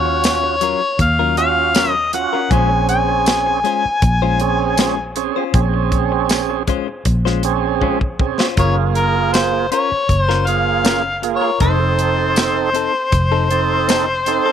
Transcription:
Already playing: D#2 C#4 F4 F#4 C#5
0.05 muted clean electric guitar stroke
0.24 snare, closed hi-hat, tambourine
0.43 muted clean electric guitar stroke
0.61 F#3 C#4 F4 A#4, closed hi-hat
0.81 muted clean electric guitar stroke
0.99 D#2 F5, muted clean electric guitar stroke, kick, closed hi-hat
1.19 F#3 C#4 F4 A#4
1.37 C#4 F4 F#4 F5, muted clean electric guitar stroke, closed hi-hat
1.75 F#3 C#4 F4 A#4, snare, closed hi-hat, tambourine
1.91 D#5
1.95 muted clean electric guitar stroke
2.13 C#4 F4 F#4 F#5, muted clean electric guitar stroke, closed hi-hat
2.33 C#4 F4 A#4
2.51 A#1 G#3 C4 C#4 F4 G#4 C5 G#5, kick, closed hi-hat
2.71 muted clean electric guitar stroke
2.89 G#5, closed hi-hat
3.09 muted clean electric guitar stroke
3.26 snare, closed hi-hat, tambourine
3.46 muted clean electric guitar stroke
3.64 G#3 C#4 F4 C5, closed hi-hat
3.85 muted clean electric guitar stroke, muted fingered electric bass stroke
4.02 A#1, muted clean electric guitar stroke, kick, closed hi-hat
4.22 G#3 C#4 F4 C5
4.40 C4 C#4 G#4, muted clean electric guitar stroke, closed hi-hat
4.78 G#3 C#4 F4 C5, snare, closed hi-hat, tambourine
4.98 muted clean electric guitar stroke
5.16 C4 C#4 G#4, muted clean electric guitar stroke, closed hi-hat
5.36 C#4 F4 C5
5.54 A#1 C4 C#4 G#4, kick, closed hi-hat
5.74 muted clean electric guitar stroke
5.92 kick, closed hi-hat
6.12 muted clean electric guitar stroke
6.29 snare, closed hi-hat, tambourine
6.50 muted clean electric guitar stroke
6.67 G#3 C#4 F4 C5, kick, closed hi-hat
6.88 muted clean electric guitar stroke
7.05 A#1, muted clean electric guitar stroke, kick, closed hi-hat
7.25 G#3 C#4 F4 C5, snare
7.43 C4 C#4 G#4, muted clean electric guitar stroke, closed hi-hat
7.81 G#3 C#4 F4 C5, kick
8.01 muted clean electric guitar stroke, kick
8.19 C4 C#4 G#4, muted clean electric guitar stroke, kick
8.39 C#4 F4 C5, snare
8.57 F#1 A#3 C#4 F4 G#4 A#4 C#5, kick, closed hi-hat
8.77 muted clean electric guitar stroke
8.95 A#4, closed hi-hat
9.15 muted clean electric guitar stroke
9.33 C5, snare, closed hi-hat, tambourine
9.53 muted clean electric guitar stroke
9.72 C#4 F4 A#4 C#5, closed hi-hat
9.91 muted clean electric guitar stroke, muted fingered electric bass stroke
10.09 F#1, muted clean electric guitar stroke, kick, closed hi-hat
10.22 C5
10.29 C#4 F4 A#4, snare
10.47 A#3 F4 G#4 F5, muted clean electric guitar stroke, closed hi-hat
10.84 C#4 F4 A#4, snare, closed hi-hat, tambourine
11.04 muted clean electric guitar stroke
11.22 A#3 F4 G#4, muted clean electric guitar stroke, closed hi-hat
11.36 C#5
11.41 F4 A#4
11.60 F1 C4 D#4 A4 C5, kick, closed hi-hat
11.80 muted clean electric guitar stroke
11.99 closed hi-hat
12.18 muted clean electric guitar stroke
12.36 snare, closed hi-hat, tambourine
12.56 muted clean electric guitar stroke
12.74 C4 D#4 A4, closed hi-hat
12.94 muted clean electric guitar stroke
13.12 F1, muted clean electric guitar stroke, kick, closed hi-hat
13.32 C4 D#4 A4
13.51 C4 D#4 A4, closed hi-hat
13.88 C4 D#4 A4, snare, closed hi-hat, tambourine
14.08 muted clean electric guitar stroke
14.26 C4 D#4 A4, muted clean electric guitar stroke, closed hi-hat
14.46 D#4 A4

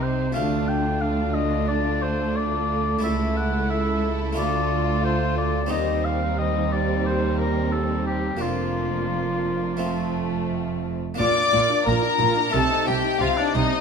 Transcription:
Already playing: C2 C3 C4 D#4 G4
0.02 C5
0.32 D2 A3 D4 F4 F5
0.37 D2
0.68 G5
1.01 F5
1.34 D#5
1.68 D5
2.02 C5
2.37 D5
2.99 A3 E4 A4
3.03 C#2 E4 A4 E5
3.37 F#5
3.70 E5
4.33 D2 A3 F4 A4
4.37 D2 F4 D5
5.04 C5
5.38 D5
5.66 D#2 G3 C4 D#4 G4 D#5
5.71 D#2 C4
6.05 F5
6.38 D#5
6.72 D5
7.06 C5
7.39 A#4
7.72 A4
8.07 G4
8.37 A#3 D4
8.41 F1 F2 F3 A#3 F4
9.77 A3 C4 F4
9.81 A3
11.14 A#3 D4 F4
11.18 A#1 A#2 F4 D5 D6
11.36 D4
11.52 A#1 A#2 F4
11.69 D4
11.86 A#1 A#2 F4 A#4 A#5
12.03 D4
12.20 A#1 A#2 F4
12.37 D4
12.50 A3 C4 D#4 A4 A5
12.54 C2 C3 A4
12.70 D#4
12.87 C2 C3 C4 G4 G5
13.04 D#4
13.20 C2 C3 C4 F4 F5
13.37 D4 D#4 D5
13.55 C2 C3 C4 D#4 D#5
13.71 D#4

